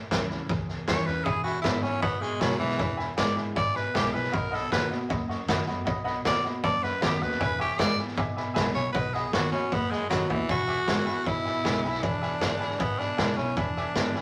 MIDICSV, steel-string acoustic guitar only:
0, 0, Header, 1, 2, 480
1, 0, Start_track
1, 0, Tempo, 384369
1, 1581, Time_signature, 4, 2, 24, 8
1, 17753, End_track
2, 0, Start_track
2, 0, Title_t, "Steel-string acoustic guitar"
2, 0, Program_c, 0, 25
2, 0, Note_on_c, 0, 45, 92
2, 152, Note_on_c, 0, 52, 83
2, 163, Note_on_c, 0, 55, 95
2, 172, Note_on_c, 0, 61, 97
2, 180, Note_on_c, 0, 64, 102
2, 362, Note_off_c, 0, 64, 0
2, 377, Note_on_c, 0, 64, 57
2, 378, Note_off_c, 0, 52, 0
2, 383, Note_off_c, 0, 55, 0
2, 388, Note_off_c, 0, 61, 0
2, 407, Note_on_c, 0, 61, 49
2, 578, Note_off_c, 0, 45, 0
2, 610, Note_off_c, 0, 64, 0
2, 621, Note_on_c, 0, 40, 95
2, 625, Note_off_c, 0, 61, 0
2, 1090, Note_on_c, 0, 52, 92
2, 1096, Note_on_c, 0, 55, 99
2, 1097, Note_on_c, 0, 61, 100
2, 1114, Note_on_c, 0, 64, 107
2, 1317, Note_off_c, 0, 64, 0
2, 1326, Note_off_c, 0, 52, 0
2, 1329, Note_off_c, 0, 55, 0
2, 1330, Note_off_c, 0, 61, 0
2, 1332, Note_on_c, 0, 64, 65
2, 1361, Note_on_c, 0, 61, 53
2, 1532, Note_off_c, 0, 40, 0
2, 1567, Note_off_c, 0, 64, 0
2, 1579, Note_on_c, 0, 40, 90
2, 1581, Note_off_c, 0, 61, 0
2, 2041, Note_on_c, 0, 50, 92
2, 2054, Note_on_c, 0, 56, 91
2, 2065, Note_on_c, 0, 64, 100
2, 2068, Note_on_c, 0, 59, 104
2, 2281, Note_off_c, 0, 50, 0
2, 2286, Note_off_c, 0, 64, 0
2, 2287, Note_off_c, 0, 56, 0
2, 2294, Note_off_c, 0, 59, 0
2, 2301, Note_on_c, 0, 64, 58
2, 2324, Note_on_c, 0, 59, 49
2, 2490, Note_off_c, 0, 40, 0
2, 2531, Note_off_c, 0, 64, 0
2, 2531, Note_on_c, 0, 47, 99
2, 2542, Note_off_c, 0, 59, 0
2, 3010, Note_on_c, 0, 50, 96
2, 3025, Note_on_c, 0, 56, 95
2, 3031, Note_on_c, 0, 59, 94
2, 3040, Note_on_c, 0, 64, 102
2, 3446, Note_off_c, 0, 47, 0
2, 3470, Note_off_c, 0, 50, 0
2, 3477, Note_off_c, 0, 56, 0
2, 3480, Note_off_c, 0, 59, 0
2, 3485, Note_off_c, 0, 64, 0
2, 3492, Note_on_c, 0, 40, 97
2, 3970, Note_on_c, 0, 50, 89
2, 3975, Note_on_c, 0, 56, 90
2, 3978, Note_on_c, 0, 59, 95
2, 3991, Note_on_c, 0, 64, 102
2, 4406, Note_off_c, 0, 40, 0
2, 4429, Note_off_c, 0, 50, 0
2, 4432, Note_off_c, 0, 56, 0
2, 4434, Note_off_c, 0, 59, 0
2, 4440, Note_off_c, 0, 64, 0
2, 4451, Note_on_c, 0, 47, 95
2, 4931, Note_on_c, 0, 50, 89
2, 4937, Note_on_c, 0, 56, 89
2, 4944, Note_on_c, 0, 64, 99
2, 4946, Note_on_c, 0, 59, 90
2, 5135, Note_off_c, 0, 64, 0
2, 5150, Note_on_c, 0, 64, 63
2, 5164, Note_off_c, 0, 59, 0
2, 5165, Note_off_c, 0, 50, 0
2, 5167, Note_off_c, 0, 56, 0
2, 5179, Note_on_c, 0, 59, 48
2, 5366, Note_off_c, 0, 47, 0
2, 5392, Note_on_c, 0, 47, 91
2, 5394, Note_off_c, 0, 64, 0
2, 5408, Note_off_c, 0, 59, 0
2, 5877, Note_on_c, 0, 51, 92
2, 5881, Note_on_c, 0, 57, 90
2, 5895, Note_on_c, 0, 59, 98
2, 5901, Note_on_c, 0, 66, 94
2, 6090, Note_off_c, 0, 66, 0
2, 6105, Note_on_c, 0, 66, 57
2, 6115, Note_off_c, 0, 59, 0
2, 6117, Note_off_c, 0, 51, 0
2, 6119, Note_off_c, 0, 57, 0
2, 6130, Note_on_c, 0, 59, 52
2, 6316, Note_off_c, 0, 47, 0
2, 6351, Note_off_c, 0, 66, 0
2, 6361, Note_on_c, 0, 42, 95
2, 6364, Note_off_c, 0, 59, 0
2, 6834, Note_on_c, 0, 51, 84
2, 6844, Note_on_c, 0, 57, 98
2, 6858, Note_on_c, 0, 59, 99
2, 6868, Note_on_c, 0, 66, 98
2, 7068, Note_off_c, 0, 66, 0
2, 7076, Note_off_c, 0, 51, 0
2, 7081, Note_off_c, 0, 57, 0
2, 7083, Note_on_c, 0, 66, 56
2, 7088, Note_off_c, 0, 59, 0
2, 7115, Note_on_c, 0, 59, 47
2, 7281, Note_off_c, 0, 42, 0
2, 7320, Note_off_c, 0, 66, 0
2, 7336, Note_off_c, 0, 59, 0
2, 7340, Note_on_c, 0, 47, 92
2, 7807, Note_on_c, 0, 51, 90
2, 7809, Note_on_c, 0, 57, 94
2, 7818, Note_on_c, 0, 59, 101
2, 7827, Note_on_c, 0, 66, 97
2, 8043, Note_off_c, 0, 51, 0
2, 8043, Note_off_c, 0, 57, 0
2, 8048, Note_off_c, 0, 59, 0
2, 8052, Note_off_c, 0, 66, 0
2, 8065, Note_on_c, 0, 66, 62
2, 8080, Note_on_c, 0, 59, 52
2, 8251, Note_off_c, 0, 47, 0
2, 8291, Note_off_c, 0, 66, 0
2, 8299, Note_off_c, 0, 59, 0
2, 8304, Note_on_c, 0, 42, 99
2, 8767, Note_on_c, 0, 51, 96
2, 8777, Note_on_c, 0, 57, 92
2, 8780, Note_on_c, 0, 59, 96
2, 8786, Note_on_c, 0, 66, 102
2, 9001, Note_off_c, 0, 66, 0
2, 9002, Note_off_c, 0, 51, 0
2, 9007, Note_off_c, 0, 57, 0
2, 9009, Note_off_c, 0, 59, 0
2, 9016, Note_on_c, 0, 66, 67
2, 9038, Note_on_c, 0, 59, 52
2, 9213, Note_off_c, 0, 42, 0
2, 9247, Note_off_c, 0, 66, 0
2, 9252, Note_on_c, 0, 40, 90
2, 9258, Note_off_c, 0, 59, 0
2, 9719, Note_on_c, 0, 50, 84
2, 9732, Note_on_c, 0, 56, 95
2, 9743, Note_on_c, 0, 59, 98
2, 9743, Note_on_c, 0, 64, 101
2, 9959, Note_off_c, 0, 50, 0
2, 9964, Note_off_c, 0, 64, 0
2, 9965, Note_off_c, 0, 56, 0
2, 9971, Note_off_c, 0, 59, 0
2, 9979, Note_on_c, 0, 64, 70
2, 9997, Note_on_c, 0, 59, 54
2, 10167, Note_off_c, 0, 40, 0
2, 10200, Note_on_c, 0, 47, 98
2, 10209, Note_off_c, 0, 64, 0
2, 10218, Note_off_c, 0, 59, 0
2, 10689, Note_on_c, 0, 50, 86
2, 10694, Note_on_c, 0, 56, 88
2, 10706, Note_on_c, 0, 59, 111
2, 10715, Note_on_c, 0, 64, 102
2, 10923, Note_off_c, 0, 64, 0
2, 10925, Note_off_c, 0, 50, 0
2, 10927, Note_off_c, 0, 56, 0
2, 10933, Note_off_c, 0, 59, 0
2, 10938, Note_on_c, 0, 64, 56
2, 10958, Note_on_c, 0, 59, 53
2, 11122, Note_off_c, 0, 47, 0
2, 11169, Note_off_c, 0, 64, 0
2, 11170, Note_on_c, 0, 47, 93
2, 11179, Note_off_c, 0, 59, 0
2, 11633, Note_on_c, 0, 51, 95
2, 11647, Note_on_c, 0, 57, 93
2, 11656, Note_on_c, 0, 59, 97
2, 11661, Note_on_c, 0, 66, 98
2, 11877, Note_off_c, 0, 51, 0
2, 11877, Note_off_c, 0, 66, 0
2, 11884, Note_off_c, 0, 57, 0
2, 11888, Note_off_c, 0, 59, 0
2, 11892, Note_on_c, 0, 66, 66
2, 11919, Note_on_c, 0, 59, 54
2, 12087, Note_off_c, 0, 47, 0
2, 12127, Note_off_c, 0, 66, 0
2, 12134, Note_on_c, 0, 42, 95
2, 12140, Note_off_c, 0, 59, 0
2, 12605, Note_on_c, 0, 51, 101
2, 12610, Note_on_c, 0, 57, 91
2, 12625, Note_on_c, 0, 66, 107
2, 12628, Note_on_c, 0, 59, 99
2, 12828, Note_off_c, 0, 66, 0
2, 12843, Note_off_c, 0, 51, 0
2, 12843, Note_on_c, 0, 66, 65
2, 12846, Note_off_c, 0, 57, 0
2, 12855, Note_off_c, 0, 59, 0
2, 12869, Note_on_c, 0, 59, 47
2, 13050, Note_off_c, 0, 42, 0
2, 13083, Note_off_c, 0, 66, 0
2, 13096, Note_off_c, 0, 59, 0
2, 13114, Note_on_c, 0, 40, 88
2, 13583, Note_on_c, 0, 50, 92
2, 13591, Note_on_c, 0, 56, 94
2, 13598, Note_on_c, 0, 59, 90
2, 13605, Note_on_c, 0, 64, 100
2, 13798, Note_off_c, 0, 64, 0
2, 13813, Note_on_c, 0, 64, 59
2, 13814, Note_off_c, 0, 50, 0
2, 13818, Note_off_c, 0, 56, 0
2, 13821, Note_off_c, 0, 59, 0
2, 13836, Note_on_c, 0, 59, 48
2, 14022, Note_off_c, 0, 40, 0
2, 14049, Note_off_c, 0, 64, 0
2, 14060, Note_off_c, 0, 59, 0
2, 14068, Note_on_c, 0, 47, 93
2, 14554, Note_on_c, 0, 50, 91
2, 14563, Note_on_c, 0, 56, 92
2, 14570, Note_on_c, 0, 59, 102
2, 14581, Note_on_c, 0, 64, 100
2, 14774, Note_off_c, 0, 64, 0
2, 14780, Note_off_c, 0, 50, 0
2, 14784, Note_off_c, 0, 56, 0
2, 14788, Note_off_c, 0, 59, 0
2, 14789, Note_on_c, 0, 64, 59
2, 14819, Note_on_c, 0, 59, 48
2, 14980, Note_off_c, 0, 47, 0
2, 15018, Note_off_c, 0, 64, 0
2, 15033, Note_off_c, 0, 59, 0
2, 15052, Note_on_c, 0, 40, 92
2, 15519, Note_on_c, 0, 50, 84
2, 15526, Note_on_c, 0, 56, 92
2, 15544, Note_on_c, 0, 59, 99
2, 15545, Note_on_c, 0, 64, 108
2, 15952, Note_off_c, 0, 40, 0
2, 15970, Note_off_c, 0, 50, 0
2, 15973, Note_off_c, 0, 56, 0
2, 15982, Note_off_c, 0, 59, 0
2, 15982, Note_off_c, 0, 64, 0
2, 15993, Note_on_c, 0, 47, 88
2, 16469, Note_on_c, 0, 50, 85
2, 16478, Note_on_c, 0, 56, 86
2, 16490, Note_on_c, 0, 59, 104
2, 16496, Note_on_c, 0, 64, 94
2, 16699, Note_off_c, 0, 50, 0
2, 16704, Note_off_c, 0, 56, 0
2, 16710, Note_off_c, 0, 59, 0
2, 16713, Note_off_c, 0, 64, 0
2, 16731, Note_on_c, 0, 64, 66
2, 16752, Note_on_c, 0, 59, 50
2, 16903, Note_off_c, 0, 47, 0
2, 16950, Note_off_c, 0, 64, 0
2, 16961, Note_off_c, 0, 59, 0
2, 16968, Note_on_c, 0, 40, 91
2, 17424, Note_on_c, 0, 50, 82
2, 17436, Note_on_c, 0, 56, 89
2, 17446, Note_on_c, 0, 59, 98
2, 17451, Note_on_c, 0, 64, 100
2, 17654, Note_off_c, 0, 64, 0
2, 17657, Note_off_c, 0, 50, 0
2, 17663, Note_off_c, 0, 56, 0
2, 17668, Note_off_c, 0, 59, 0
2, 17669, Note_on_c, 0, 64, 57
2, 17691, Note_on_c, 0, 59, 48
2, 17753, Note_off_c, 0, 40, 0
2, 17753, Note_off_c, 0, 59, 0
2, 17753, Note_off_c, 0, 64, 0
2, 17753, End_track
0, 0, End_of_file